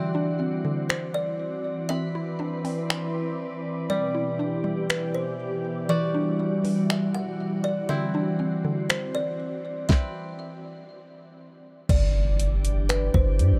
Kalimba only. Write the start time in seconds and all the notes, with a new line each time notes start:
Already playing: E5
0.89 C5
1.14 D5
1.89 E5
3.90 D5
4.90 B4
5.14 C5
5.89 D5
6.90 E5
7.15 F#5
7.64 D5
7.89 E5
8.90 C5
9.15 D5
9.89 E5
11.90 D5
12.89 B4
13.14 C5